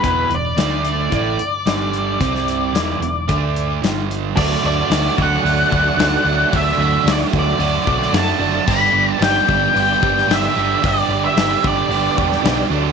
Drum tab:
CC |----------------|----------------|x---------------|----------------|
HH |x-x-x-x-x-x-x-x-|x-x-x-x-x-x-x-x-|----o---o---o---|o---o---o---o---|
SD |----o-------o---|-o--o-------o---|----o-------o---|----o------oo---|
BD |o-------o-------|o-------o-------|o-----o---o-----|o-----o---o-----|

CC |x---------------|----------------|
HH |----o---o---o---|o---o---o---o---|
SD |----o------oo---|----o------oo---|
BD |o-----o---o-----|o-----o---o-----|